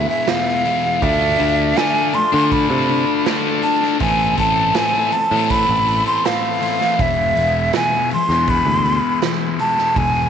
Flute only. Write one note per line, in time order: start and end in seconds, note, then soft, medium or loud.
0.09 0.30 E5 medium
0.29 1.04 F5 medium
1.03 1.79 E5 medium
1.77 2.16 G#5 loud
2.14 2.54 C6 loud
2.52 3.27 B5 medium
3.62 3.98 A5 medium
4.02 4.36 G#5 loud
4.39 4.77 A5 medium
4.76 5.14 G#5 medium
5.12 5.52 A5 medium
5.50 6.06 B5 medium
6.07 6.27 C6 medium
6.26 7.03 F5 medium
7.01 7.75 E5 medium
7.76 8.10 G#5 medium
8.14 8.52 C6 medium
8.50 9.24 B5 medium
9.60 9.99 A5 medium
9.97 10.29 G#5 medium